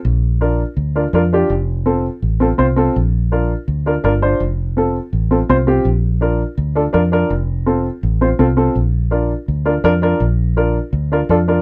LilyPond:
<<
  \new Staff \with { instrumentName = "Upright piano" } { \time 4/4 \key bes \major \tempo 4 = 165 r4 <d' f' bes'>8 r4 <d' f' bes'>8 <d' f' bes'>8 <d' f' g'>8 | r4 <c' f' a'>8 r4 <c' f' a'>8 <c' f' c''>8 <c' f' a'>8 | r4 <d' f' bes'>8 r4 <d' f' bes'>8 <d' f' bes'>8 <d' f' c''>8 | r4 <c' f' a'>8 r4 <c' f' a'>8 <c' f' c''>8 <c' f' g'>8 |
r4 <d' f' bes'>8 r4 <d' f' a'>8 <d' f' bes'>8 <d' f' bes'>8 | r4 <c' f' a'>8 r4 <c' f' c''>8 <c' f' a'>8 <c' f' a'>8 | r4 <d' f' bes'>8 r4 <d' f' bes'>8 <d' f' bes'>8 <d' f' bes'>8 | r4 <d' f' bes'>8 r4 <d' f' bes'>8 <d' f' a'>8 <d' f' bes'>8 | }
  \new Staff \with { instrumentName = "Fingered electric bass" } { \clef bass \time 4/4 \key bes \major bes,,2 d,4 f,4 | f,,2 a,,4 c,4 | bes,,2 d,4 g,,4 | f,,2 a,,4 c,4 |
bes,,2 d,4 f,4 | f,,2 a,,4 c,4 | bes,,2 d,4 f,4 | bes,,2 d,4 f,4 | }
>>